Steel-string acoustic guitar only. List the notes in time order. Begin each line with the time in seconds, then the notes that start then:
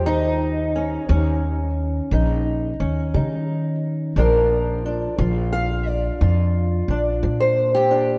0.06 D#3 D#4
0.76 C#4
1.09 G3 C#4
2.12 D#3 D#4
2.80 C#4
3.14 G3 D#4
4.16 A#2 F3 D4 F4 A#4
4.86 D4
5.18 F3 F4
5.53 F5
5.87 D5
6.21 A#2 F4
6.91 D4
7.23 F3
7.40 C5
7.75 G4
7.91 D4